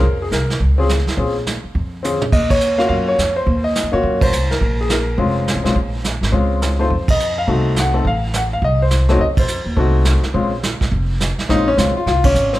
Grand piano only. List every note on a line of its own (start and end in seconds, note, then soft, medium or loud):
0.00 0.22 A#4 medium
0.22 0.27 G#4 medium
0.32 0.59 A#4 medium
0.78 0.88 C4 medium
0.78 0.88 C#4 medium
0.78 0.89 F4 medium
0.78 0.89 G#4 medium
1.18 1.34 C4 medium
1.18 1.34 C#4 soft
1.18 1.34 F4 soft
1.18 1.35 G#4 medium
2.03 2.19 C4 medium
2.03 2.20 C#4 medium
2.03 2.20 F4 medium
2.03 2.20 G#4 medium
2.33 2.49 D#5 medium
2.51 2.77 C#5 medium
2.78 3.16 A#3 medium
2.78 3.16 C#4 medium
2.78 3.16 F4 medium
2.78 3.16 F#4 medium
2.78 2.87 F5 medium
2.89 3.06 F5 medium
3.08 3.35 C#5 medium
3.36 3.63 C5 medium
3.64 3.91 D#5 medium
3.92 4.30 A#3 medium
3.92 4.30 C#4 medium
3.92 4.30 F4 medium
3.92 4.31 F#4 medium
3.92 4.23 C#5 medium
4.23 4.52 C5 medium
4.51 4.77 A#4 medium
4.81 4.91 G#4 medium
4.91 5.17 A#4 medium
5.18 5.61 G#3 medium
5.18 5.61 C4 medium
5.18 5.61 C#4 medium
5.18 5.62 F4 medium
5.64 5.74 G#3 medium
5.64 5.74 C4 medium
5.64 5.75 C#4 medium
5.64 5.75 F4 medium
6.32 6.75 G#3 medium
6.32 6.75 C4 medium
6.32 6.76 C#4 medium
6.32 6.76 F4 medium
6.79 6.89 A3 medium
6.79 6.89 C4 soft
6.79 6.90 D#4 medium
6.79 6.90 F4 medium
6.79 7.07 C5 medium
7.10 7.36 D#5 medium
7.38 7.78 F5 medium
7.48 7.91 A3 medium
7.48 7.91 C4 medium
7.48 7.91 D#4 medium
7.48 7.91 F#4 medium
7.80 8.08 F#5 medium
7.94 8.04 A3 medium
7.94 8.04 C4 medium
7.94 8.04 D#4 medium
7.94 8.05 A4 medium
8.07 8.36 F5 medium
8.36 8.41 F#5 medium
8.53 8.64 F5 medium
8.64 8.80 D#5 medium
8.82 9.11 C5 medium
9.09 9.19 A3 medium
9.09 9.19 C4 medium
9.09 9.19 D#4 medium
9.09 9.20 F#4 medium
9.09 9.20 C#5 medium
9.21 9.26 D#5 medium
9.39 9.65 C5 medium
9.77 10.20 A3 medium
9.77 10.20 C4 medium
9.77 10.20 D#4 medium
9.77 10.21 F#4 medium
10.34 10.50 G#3 medium
10.34 10.50 C4 medium
10.34 10.51 C#4 medium
10.34 10.51 F4 medium
11.49 11.65 G#3 medium
11.49 11.65 C4 medium
11.49 11.66 C#4 medium
11.49 11.68 D#4 loud
11.49 11.66 F4 medium
11.68 11.77 C#4 loud
11.77 11.93 G#3 medium
11.77 11.94 C4 medium
11.77 11.94 C#4 medium
11.77 11.94 F4 medium
11.97 12.06 F4 medium
12.08 12.24 F4 loud
12.25 12.54 C#4 loud
12.53 12.60 C4 medium